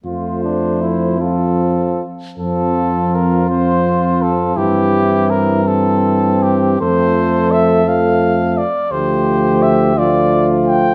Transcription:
X:1
M:6/8
L:1/8
Q:3/8=56
K:F
V:1 name="Cornet"
c3 A2 z | A2 B c2 A | G2 B A2 G | c2 e f2 d |
c2 e d2 g |]
V:2 name="Flugelhorn"
F D E F2 z | F6 | E3 C3 | A4- A z |
G3 F3 |]
V:3 name="Euphonium"
A,3 C2 z | C3 C3 | C6 | A,3 A,2 z |
A,3 A,3 |]
V:4 name="Euphonium" clef=bass
F,3 F,2 z | F,3 F,3 | E,6 | F,3 F,2 z |
F,3 F,3 |]
V:5 name="Tuba" clef=bass
F,,4- F,, z | F,,6 | G,,6 | F,,4- F,, z |
D,,6 |]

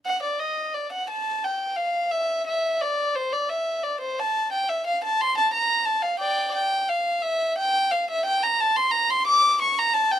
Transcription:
X:1
M:6/8
L:1/16
Q:3/8=59
K:Dm
V:1 name="Violin"
^f d _e2 d f a2 g2 =f2 | e2 e2 d2 c d e2 d c | a2 g e f a c' a b2 a f | [dg]2 g2 f2 e2 g2 f e |
g b a c' b c' d'2 ^c' b a g |]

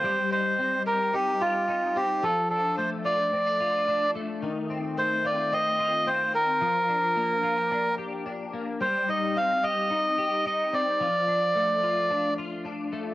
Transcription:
X:1
M:4/4
L:1/16
Q:1/4=109
K:Cdor
V:1 name="Melodica"
c2 c4 B2 G2 F4 G2 | A2 A2 c2 d8 z2 | z4 c2 d2 e4 c2 B2- | B8- B2 z6 |
c2 e2 f2 e6 e2 d2- | d8- d2 z6 |]
V:2 name="Clean electric guitar"
G,2 E2 C2 G2 E2 G2 E2 C2 | F,2 D2 A,2 F2 C D F2 D2 A,2 | E,2 C2 A,2 F2 C2 F2 C4 | F,2 D2 B,2 F G D2 G2 D2 B,2 |
G,2 E2 C2 G2 E2 G2 E2 C2 | F,2 D2 A,2 F2 D2 F2 D2 A,2 |]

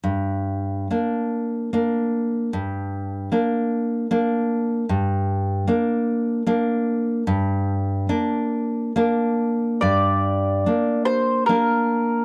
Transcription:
X:1
M:3/4
L:1/8
Q:1/4=74
K:Gm
V:1 name="Mandolin"
z6 | z6 | z6 | z6 |
d3 c B2 |]
V:2 name="Nylon-string guitar"
G,,2 [B,D]2 [B,D]2 | G,,2 [B,D]2 [B,D]2 | G,,2 [B,D]2 [B,D]2 | G,,2 [B,D]2 [B,D]2 |
G,,2 [B,D]2 [B,D]2 |]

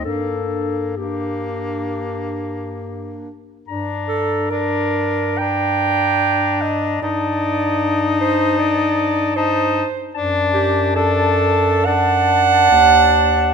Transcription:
X:1
M:4/4
L:1/8
Q:1/4=72
K:Gm
V:1 name="Clarinet"
A2 G4- G z | b2 b2 b4 | a6 a z | a2 a2 a4 |]
V:2 name="Clarinet"
D2 D4- D z | z A B2 g3 e | d3 c d2 c2 | z G A2 ^f4 |]
V:3 name="Tenor saxophone"
B,2 B,4- B, z | D2 D2 D4 | E6 E z | D2 D2 D4 |]
V:4 name="Bass clarinet" clef=bass
G,,6- G,, z | G,,8 | G,,6- G,, z | ^F,,6 E,,2 |]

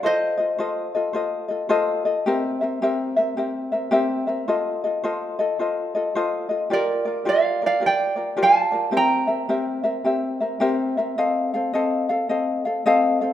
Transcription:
X:1
M:4/4
L:1/8
Q:"Swing" 1/4=108
K:Fmix
V:1 name="Ukulele"
[ce]6 z2 | z8 | z8 | [Bd]2 [df] [df] [dg]2 [fa]2 |
[gb]6 z2 | z8 |]
V:2 name="Ukulele"
[FAce] [FAe] [FAce] [FAe] [FAce] [FAe] [FAce] [FAe] | [CGB=e] [CBe] [CGBe] [CBe] [CGBe] [CBe] [CGBe] [CBe] | [FAce] [FAe] [FAce] [FAe] [FAce] [FAe] [FAce] [FAe] | [FGBd] [FBd] [FGBd] [FBd] [FGBd] [FBd] [FGBd] [FBd] |
[CGB=e] [CBe] [CGBe] [CBe] [CGBe] [CBe] [CGBe] [CBe] | [CAef] [CAf] [CAef] [CAf] [CAef] [CAf] [CAef] [CAf] |]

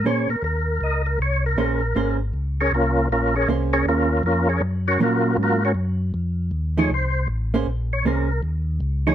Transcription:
X:1
M:4/4
L:1/8
Q:"Swing" 1/4=158
K:Bbm
V:1 name="Tonewheel organ"
d B B2 e B d B | B3 z2 [DABd] [B,DFB]2 | [B,DFB] [DABd] z [DABd] [B,DFB]2 [B,DFB] [DABd] | z [DGBd] [B,FGB]2 [B,FGB] [DGBd] z2 |
z3 d c2 z2 | z d B2 z3 d |]
V:2 name="Hollow-body jazz guitar"
[B,DAc] z6 z | [B,DAc] z [B,DAc] z4 z | z2 [B,DAc]3 z3 | z2 [G,B,D]3 z3 |
z3 [F,=A,E^G] z3 [B,DGc] | z2 [B,DAc] z4 [F,=A,E_A] |]
V:3 name="Tonewheel organ" clef=bass
B,, B,, E,,2 D,,2 C,,2 | B,,,2 A,,,2 D,,2 C,,2 | B,,,2 C,,2 E,,2 F,,2 | G,,2 B,,2 A,,2 G,,2 |
F,,2 E,,2 C,,2 =A,,,2 | B,,,2 C,,2 E,,2 D,,2 |]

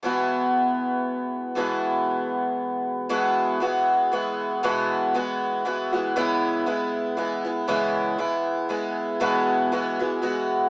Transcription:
X:1
M:3/4
L:1/8
Q:"Swing" 1/4=118
K:E
V:1 name="Twelve-string acoustic guitar" clef=bass
[E,,B,,E,G,B,F]6 | [E,,B,,E,G,B,F]6 | [E,,B,,E,G,B,F]2 [E,G,B,F]2 [E,G,B,F]2 | [E,,B,,E,G,B,F]2 [E,G,B,F]2 [E,G,B,F] [E,G,B,F] |
[C,E,G,B,E]2 [E,G,B,E]2 [E,G,B,E] [G,B,E] | [C,E,G,B,E]2 [E,G,B,E]2 [E,G,B,E]2 | [E,,B,,E,G,B,F]2 [E,G,B,F] [E,G,B,F] [E,G,B,F]2 |]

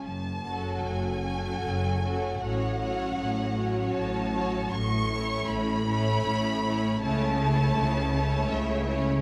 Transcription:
X:1
M:3/4
L:1/8
Q:1/4=78
K:F#m
V:1 name="Violin section"
a2 g4 | f4 a2 | c'2 b4 | a4 e z |]
V:2 name="Violin section"
z [FA]2 [FA]2 [FA] | [Fc] [Fc]2 [Fc]2 [Fc] | z [Ec]2 [Ec]2 [Ec] | [Ec] [Ec]2 [Ec]2 [Ec] |]
V:3 name="Viola section"
z [F,C]2 [F,C]2 [F,C] | [F,C] [F,C]2 [F,C]2 [F,C] | z [A,C]2 [A,C]2 [A,C] | [A,C] [A,C]2 [A,C]2 [A,C] |]
V:4 name="Cello section" clef=bass
F,,2 F,,2 F,,2 | A,,2 A,,2 A,,2 | A,,2 A,,2 A,,2 | C,2 C,2 C,2 |]
V:5 name="Double bass section" clef=bass
F,,,2 F,,,2 F,,,2 | A,,,2 A,,,2 A,,,2 | A,,,2 A,,,2 A,,,2 | C,,2 C,,2 C,,2 |]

